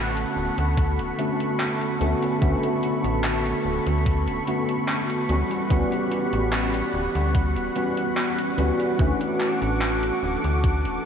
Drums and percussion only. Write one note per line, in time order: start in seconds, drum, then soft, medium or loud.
0.17 closed hi-hat soft
0.58 closed hi-hat soft
0.77 kick loud
0.77 closed hi-hat medium
0.99 closed hi-hat soft
1.19 closed hi-hat medium
1.40 closed hi-hat soft
1.60 clap loud
1.60 closed hi-hat medium
1.81 closed hi-hat soft
2.01 closed hi-hat medium
2.22 closed hi-hat soft
2.42 kick loud
2.42 closed hi-hat medium
2.63 closed hi-hat soft
2.83 closed hi-hat medium
3.04 closed hi-hat soft
3.24 clap loud
3.24 closed hi-hat medium
3.45 closed hi-hat soft
3.87 closed hi-hat soft
4.06 kick loud
4.06 closed hi-hat loud
4.28 closed hi-hat soft
4.47 closed hi-hat medium
4.69 closed hi-hat soft
4.88 clap loud
4.88 closed hi-hat loud
5.10 closed hi-hat soft
5.29 closed hi-hat medium
5.51 closed hi-hat soft
5.70 kick loud
5.70 closed hi-hat medium
5.92 closed hi-hat soft
6.12 closed hi-hat medium
6.33 closed hi-hat soft
6.53 clap loud
6.53 closed hi-hat medium
6.74 closed hi-hat soft
7.15 closed hi-hat soft
7.35 kick loud
7.35 closed hi-hat medium
7.56 closed hi-hat soft
7.76 closed hi-hat medium
7.97 closed hi-hat soft
8.17 clap loud
8.17 closed hi-hat medium
8.39 closed hi-hat soft
8.58 closed hi-hat medium
8.80 closed hi-hat soft
8.99 kick loud
8.99 closed hi-hat medium
9.21 closed hi-hat soft
9.40 clap medium
9.40 closed hi-hat medium
9.62 closed hi-hat soft
9.81 clap loud
9.81 closed hi-hat medium
10.03 closed hi-hat soft
10.44 closed hi-hat soft
10.64 kick loud
10.64 closed hi-hat medium
10.85 closed hi-hat soft